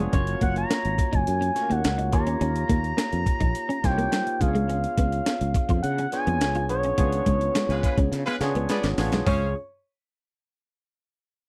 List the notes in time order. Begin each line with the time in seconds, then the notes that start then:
Already playing: B3 D4 F4 G#4 B4 C#5
0.12 F#1 A#3 C#4 F4 F#4 C#5, kick, closed hi-hat
0.27 closed hi-hat
0.41 F#1 A#3 F#5, kick, closed hi-hat
0.56 A#5, muted clean electric guitar stroke, closed hi-hat
0.70 A#3, snare, closed hi-hat
0.85 G#1, closed hi-hat
0.98 muted clean electric guitar stroke, kick, closed hi-hat
1.13 F#1 D#4 G#5, kick, closed hi-hat
1.27 F#2 G#5, closed hi-hat
1.41 C#4, closed hi-hat
1.55 A3 C#4 F#4 C#5, muted clean electric guitar stroke, snare, closed hi-hat
1.62 A#3
1.70 D#2 A#3 F#5, closed hi-hat
1.84 C#2, snare, closed hi-hat
1.98 D#4, closed hi-hat
2.12 D#2 A#3 D#4 F4 G4 C#5 A#5, muted clean electric guitar stroke, kick, closed hi-hat
2.27 C#4, closed hi-hat
2.41 D#2 C#4, closed hi-hat
2.56 closed hi-hat
2.69 D#2 A#3, kick, closed hi-hat
2.83 muted clean electric guitar stroke, closed hi-hat
2.97 A#3, snare, closed hi-hat
3.12 F2, closed hi-hat
3.26 muted clean electric guitar stroke, kick, closed hi-hat
3.40 A#1 D#4, kick, closed hi-hat
3.55 closed hi-hat
3.69 C#4, closed hi-hat
3.83 C2 A#3 D#4 F4 G4 C5 G5, muted clean electric guitar stroke, kick, snare, closed hi-hat
3.91 C#5
3.98 A#3, closed hi-hat
4.12 G3, snare, closed hi-hat
4.26 muted clean electric guitar stroke, closed hi-hat
4.40 C#2 B3 D4 F4 G#4 B4 F5, kick, closed hi-hat
4.48 C#5
4.55 G#3, closed hi-hat
4.69 C#4, closed hi-hat
4.84 closed hi-hat
4.97 C#2 B3, kick, closed hi-hat
5.12 muted clean electric guitar stroke, closed hi-hat
5.26 B3, snare, closed hi-hat
5.41 C#2, closed hi-hat
5.54 muted clean electric guitar stroke, kick, closed hi-hat
5.69 F2 F4, kick, closed hi-hat
5.83 C#3 F#5, closed hi-hat
5.98 C#4, closed hi-hat
6.12 B3 D4 F4 G#4 C#5 G#5, muted clean electric guitar stroke, snare, closed hi-hat
6.27 F2 B3, closed hi-hat
6.41 C#2, snare, closed hi-hat
6.55 F4, closed hi-hat
6.69 B1 B3 D4 F4 G#4 C#5, muted clean electric guitar stroke, closed hi-hat
6.83 C#4, closed hi-hat
6.98 C#2 B3 D4 F4 G#4 C#5, kick, closed hi-hat
7.12 closed hi-hat
7.26 C#2 G#3, kick, closed hi-hat
7.41 muted clean electric guitar stroke, closed hi-hat
7.55 G#3, snare, closed hi-hat
7.69 C#2 G#3 F4 B4, snare, closed hi-hat
7.83 G#3 F4 B4, muted clean electric guitar stroke, kick, closed hi-hat
7.97 C#2 C#4, kick, closed hi-hat
8.12 C#3, snare, closed hi-hat
8.25 G#3 B3 F4 B4, closed hi-hat
8.40 C#3 B3 D4 F4 G#4 C#5, muted clean electric guitar stroke, snare, closed hi-hat
8.55 C#2 B3, closed hi-hat
8.69 G#3 B3 G#4 D5, snare, closed hi-hat
8.83 G#1, muted clean electric guitar stroke, snare, closed hi-hat
8.98 A1 B3 D4 F4 G#4 C#5, snare, open hi-hat
9.12 B1 G#3, snare, closed hi-hat
9.25 C#2 G#3 C4 C#4 F4 G#4 C5 C#5 F5, kick, floor tom, open hi-hat